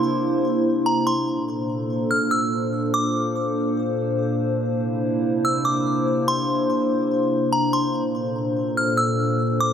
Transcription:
Already playing: ambient pad C3 A#3 D4 E4 C5, synth bell C6
0.86 synth bell A#5
1.07 synth bell C6
1.27 ambient pad A#2 A#3 D4 A4 C5
2.11 synth bell F6
2.31 synth bell E6
2.94 synth bell D6
4.61 ambient pad C3 E4
5.45 synth bell E6
5.65 synth bell D6
6.28 synth bell C6
7.53 synth bell A#5
7.73 synth bell C6
7.94 ambient pad A#2 A4
8.77 synth bell F6
8.97 synth bell E6
9.61 synth bell D6

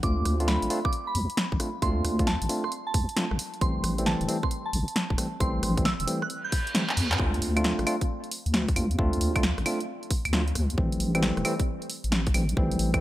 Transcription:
0.03 wobble bass D2, tine electric piano A3 C4 D4 F4, synth bell D6, kick, closed hi-hat
0.25 wobble bass D2, cross-stick, open hi-hat
0.40 tine electric piano A3 C4 D4 F4, closed hi-hat
0.48 synth bell B5, snare
0.62 wobble bass A1, closed hi-hat
0.70 tine electric piano A3 C4 D4 F4, open hi-hat
0.85 synth bell D6, kick, cross-stick
0.93 closed hi-hat
1.07 synth bell B5
1.15 wobble bass D2, open hi-hat
1.30 closed hi-hat
1.37 snare, closed hi-hat
1.52 wobble bass A1, kick
1.60 tine electric piano A3 C4 D4 F4, cross-stick, open hi-hat
1.82 wobble bass D2, tine electric piano A3 C4 D4 F4, synth bell C6, kick, closed hi-hat
2.05 wobble bass D2, cross-stick, open hi-hat
2.19 tine electric piano A3 C4 D4 F4, kick, closed hi-hat
2.27 synth bell A5, snare
2.42 wobble bass A1, closed hi-hat
2.49 tine electric piano A3 C4 D4 F4, open hi-hat
2.64 synth bell C6, cross-stick
2.72 closed hi-hat
2.87 synth bell A5
2.94 wobble bass D2, kick, open hi-hat
3.09 closed hi-hat
3.17 tine electric piano A3 C4 D4 F4, snare, closed hi-hat
3.31 wobble bass A1, cross-stick
3.39 open hi-hat
3.54 closed hi-hat
3.61 wobble bass A1, tine electric piano E3 G3 A3 C4, synth bell C6, kick, closed hi-hat
3.84 wobble bass A1, cross-stick, open hi-hat
3.98 tine electric piano E3 G3 A3 C4, closed hi-hat
4.06 synth bell A5, snare
4.21 wobble bass E1, closed hi-hat
4.28 tine electric piano E3 G3 A3 C4, open hi-hat
4.43 synth bell C6, kick, cross-stick
4.51 closed hi-hat
4.66 synth bell A5
4.73 wobble bass A1, open hi-hat
4.88 closed hi-hat
4.96 snare, closed hi-hat
5.10 wobble bass E1, kick
5.18 tine electric piano E3 G3 A3 C4, cross-stick, open hi-hat
5.40 wobble bass A1, tine electric piano E3 G3 A3 C4, synth bell C6, kick, closed hi-hat
5.63 wobble bass A1, cross-stick, open hi-hat
5.77 tine electric piano E3 G3 A3 C4, kick, closed hi-hat
5.85 synth bell E6, snare
6.00 wobble bass E1, closed hi-hat
6.07 tine electric piano E3 G3 A3 C4, open hi-hat
6.22 synth bell F#6, cross-stick
6.30 closed hi-hat, reverse cymbal
6.44 synth bell G6
6.52 kick, open hi-hat
6.67 closed hi-hat
6.75 tine electric piano E3 G3 A3 C4, snare, closed hi-hat
6.89 clap
6.97 wobble bass E2, open hi-hat
7.12 clap, closed hi-hat
7.19 wobble bass D2, tine electric piano A3 C4 D4 F4, kick
7.34 closed hi-hat
7.42 wobble bass D2, open hi-hat
7.56 tine electric piano A3 C4 D4 F4, cross-stick, closed hi-hat, claves
7.64 snare
7.79 wobble bass A1, cross-stick, closed hi-hat
7.87 tine electric piano A3 C4 D4 F4, open hi-hat, claves
8.01 kick, closed hi-hat
8.24 closed hi-hat
8.31 open hi-hat
8.46 wobble bass D2, closed hi-hat
8.54 snare
8.68 kick, closed hi-hat
8.76 wobble bass D2, tine electric piano A3 C4 D4 F4, open hi-hat, claves
8.91 closed hi-hat
8.99 wobble bass D2, tine electric piano A3 C4 D4 F4, kick
9.13 closed hi-hat
9.21 wobble bass D2, open hi-hat
9.36 tine electric piano A3 C4 D4 F4, kick, cross-stick, closed hi-hat, claves
9.43 snare
9.58 wobble bass A1, cross-stick, closed hi-hat
9.66 tine electric piano A3 C4 D4 F4, open hi-hat, claves
9.80 closed hi-hat
10.03 closed hi-hat
10.11 kick, open hi-hat
10.25 wobble bass D2, closed hi-hat, claves
10.33 tine electric piano A3 C4 D4 F4, snare
10.48 closed hi-hat
10.55 wobble bass D2, cross-stick, open hi-hat
10.70 closed hi-hat
10.78 wobble bass A1, tine electric piano E3 G3 A3 C4, kick
10.92 closed hi-hat
11.00 wobble bass A1, open hi-hat
11.15 tine electric piano E3 G3 A3 C4, cross-stick, closed hi-hat, claves
11.23 snare
11.37 wobble bass E1, cross-stick, closed hi-hat
11.45 tine electric piano E3 G3 A3 C4, open hi-hat, claves
11.60 kick, closed hi-hat
11.82 closed hi-hat
11.90 open hi-hat
12.04 wobble bass A1, closed hi-hat
12.12 snare
12.27 kick, closed hi-hat
12.34 wobble bass A1, tine electric piano E3 G3 A3 C4, open hi-hat, claves
12.49 closed hi-hat
12.57 wobble bass A1, tine electric piano E3 G3 A3 C4, kick
12.71 closed hi-hat
12.79 wobble bass A1, open hi-hat
12.94 tine electric piano E3 G3 A3 C4, kick, cross-stick, closed hi-hat, claves

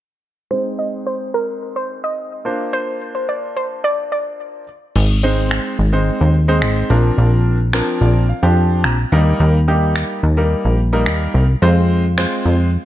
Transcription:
0.51 grand piano G#3 C4 D#4 C5, synth pluck C5
0.79 synth pluck D#5
1.07 synth pluck C5
1.34 synth pluck A#4
1.76 synth pluck C5
2.04 synth pluck D#5
2.45 grand piano A#3 D4 F4 C5
2.73 synth pluck C5
3.15 synth pluck C5
3.29 synth pluck D5
3.56 synth pluck C5
3.84 synth pluck D5
4.12 synth pluck D5
4.96 analog synth bass G#1, crash
5.23 grand piano G#3 C4 D#4 C5
5.51 finger snap
5.79 analog synth bass G#1
5.93 grand piano G#3 C4 D#4 C5
6.21 analog synth bass D#2
6.48 grand piano G#3 C4 D#4 C5
6.62 analog synth bass G#1, finger snap
6.90 analog synth bass A#1, grand piano F3 C4 D4 A#4
7.18 analog synth bass A#1
7.73 grand piano F3 C4 D4 A#4, finger snap
8.01 analog synth bass A#1, grand piano D5
8.29 grand piano F5
8.43 analog synth bass F2, grand piano F3 C4 D4 G4
8.84 analog synth bass A#1, grand piano A#5, finger snap
9.12 analog synth bass D#2, grand piano G3 A#3 D#4 A#4
9.40 analog synth bass D#2
9.68 grand piano G3 A#3 D#4 G4
9.96 finger snap
10.23 analog synth bass D#2
10.37 grand piano G3 A#3 D#4 A#4
10.65 analog synth bass A#1
10.93 grand piano G3 A#3 D#4 A#4
11.06 analog synth bass D#2, finger snap
11.34 analog synth bass C2
11.62 analog synth bass F2, grand piano G#3 C4 F4 C5
12.18 grand piano G#3 C4 F4 C5, finger snap
12.46 analog synth bass F2

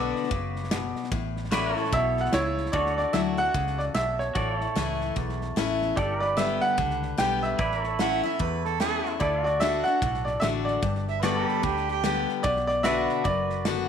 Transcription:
Already playing: fingered electric bass B1, steel-string acoustic guitar B2 D3 B3 D4 F#4, pedal steel guitar F#4 B4 D5, upright piano D6
0.16 snare
0.23 snare
0.31 fingered electric bass F#1, steel-string acoustic guitar C#3, kick, snare
0.56 snare
0.64 snare
0.71 steel-string acoustic guitar B2, snare, hi-hat pedal
0.96 snare
1.04 snare
1.11 fingered electric bass A1, steel-string acoustic guitar A2, kick, snare
1.37 snare
1.45 snare
1.51 steel-string acoustic guitar E3 A3 C#4 E4, pedal steel guitar F#4 B4 D5, snare, hi-hat pedal
1.74 pedal steel guitar E4 A4 C#5, snare
1.84 snare
1.92 fingered electric bass B1, steel-string acoustic guitar B2, upright piano E5, kick, snare
2.17 upright piano F#5, snare
2.25 snare
2.33 fingered electric bass C#2, steel-string acoustic guitar C#3, upright piano E4 C#5, snare, hi-hat pedal
2.58 snare
2.66 snare
2.72 fingered electric bass D2, steel-string acoustic guitar D3, pedal steel guitar F#4 A4 C#5, upright piano D5, kick, snare
2.86 snare
2.96 pedal steel guitar D5, upright piano D5, snare
3.13 fingered electric bass D2, steel-string acoustic guitar F#3 A3 E4 F#4, upright piano E5, snare, hi-hat pedal
3.37 steel-string acoustic guitar E4 F#4, upright piano F#5, snare
3.54 fingered electric bass C#2, steel-string acoustic guitar C#3, kick, snare
3.67 snare
3.78 upright piano D5, snare
3.94 fingered electric bass B1, steel-string acoustic guitar B2, upright piano E5, snare, hi-hat pedal
4.19 upright piano C#5, snare
4.35 fingered electric bass A1, steel-string acoustic guitar A2, pedal steel guitar F#4 A4 D5, kick, snare
4.57 pedal steel guitar E4 C#5, snare
4.75 fingered electric bass C#2, steel-string acoustic guitar E3 A3 C#4 E4, snare, hi-hat pedal
5.01 snare
5.16 fingered electric bass B1, steel-string acoustic guitar E2, kick, snare
5.29 snare
5.41 snare
5.56 fingered electric bass A1, steel-string acoustic guitar E3 A3 C#4 E4, snare, hi-hat pedal
5.82 snare
5.96 fingered electric bass G1, steel-string acoustic guitar G2, pedal steel guitar G4 A4 D5, upright piano D5, kick, snare
6.20 pedal steel guitar B4, upright piano D5, snare
6.37 steel-string acoustic guitar D3 G3 B3 G4, upright piano E5, snare, hi-hat pedal
6.61 upright piano F#5, snare
6.78 fingered electric bass C#2, steel-string acoustic guitar D3, kick, snare
6.90 snare
7.02 snare
7.18 fingered electric bass B1, steel-string acoustic guitar D3 G3 B3 G4, upright piano G5, snare, hi-hat pedal
7.43 upright piano E5, snare
7.59 fingered electric bass A1, steel-string acoustic guitar A2, pedal steel guitar E4 B4 D5, kick, snare
7.71 snare
7.81 pedal steel guitar C#5, snare
7.85 pedal steel guitar A4
7.99 steel-string acoustic guitar E3 A3 C#4 E4, harmonica F#5, snare, hi-hat pedal
8.23 steel-string acoustic guitar C#4 E4, harmonica E5, snare
8.39 steel-string acoustic guitar E2, fingered electric bass E2, harmonica B4, kick, snare
8.65 harmonica A4, snare
8.80 steel-string acoustic guitar E3 A3 C#4 E4, harmonica A4, snare, hi-hat pedal
9.05 snare
9.20 fingered electric bass D2, steel-string acoustic guitar D3, pedal steel guitar E4 A4 D5, upright piano D5, kick, snare
9.44 pedal steel guitar F#4, upright piano D5, snare
9.60 steel-string acoustic guitar D3 A3 D4 F#4, upright piano E5, snare, hi-hat pedal
9.84 steel-string acoustic guitar D4 F#4, upright piano F#5, snare
10.02 fingered electric bass B1, steel-string acoustic guitar A2, kick, snare
10.14 snare
10.25 upright piano D5, snare
10.40 fingered electric bass A1, steel-string acoustic guitar D3 A3 D4 F#4, upright piano E5, snare, hi-hat pedal
10.65 upright piano D5, snare
10.82 fingered electric bass G1, steel-string acoustic guitar G2, kick, snare
10.95 snare
11.08 harmonica E5, snare
11.22 steel-string acoustic guitar D3 G3 B3 G4, pedal steel guitar F#4 A4 D5, harmonica B4, snare, hi-hat pedal
11.36 harmonica A4
11.43 pedal steel guitar G4
11.48 pedal steel guitar B4, snare
11.63 fingered electric bass D2, steel-string acoustic guitar D3, harmonica G4, kick, snare
11.77 snare
11.88 harmonica G4, snare
12.04 steel-string acoustic guitar D3 G3 B3 G4, snare, hi-hat pedal
12.29 snare
12.43 fingered electric bass B1, steel-string acoustic guitar B2, upright piano D5, kick, snare
12.56 snare
12.67 upright piano D5, snare
12.83 steel-string acoustic guitar D3 B3 D4 F#4, pedal steel guitar F#4 B4 D5, upright piano E5, snare, hi-hat pedal
13.09 snare
13.24 fingered electric bass F#1, steel-string acoustic guitar F#2, upright piano D5, kick, snare
13.50 snare
13.65 steel-string acoustic guitar D3 B3 D4 F#4, snare, hi-hat pedal

